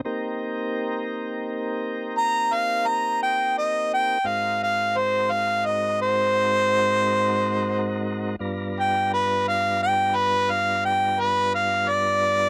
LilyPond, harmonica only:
\new Staff \with { instrumentName = "Harmonica" } { \time 12/8 \key c \minor \tempo 4. = 58 r2. bes''8 f''8 bes''8 g''8 ees''8 g''8 | f''8 f''8 c''8 f''8 ees''8 c''2. r8 | r8 g''8 b'8 f''8 g''8 b'8 f''8 g''8 b'8 f''8 d''4 | }